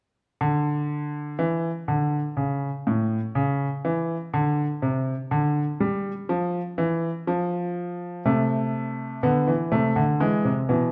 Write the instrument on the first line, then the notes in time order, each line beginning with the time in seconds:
grand piano
0.41 D3
1.39 E3
1.88 D3
2.37 C#3
2.87 A2
3.35 C#3
3.85 E3
4.34 D3
4.82 C3
5.31 D3
5.80 G3
6.29 F3
6.78 E3
7.27 F3
8.25 C3 A3
9.23 D3 B3
9.47 E3
9.72 C3 A3
9.96 D3
10.20 E3 G#3
10.45 C3
10.69 B2 E3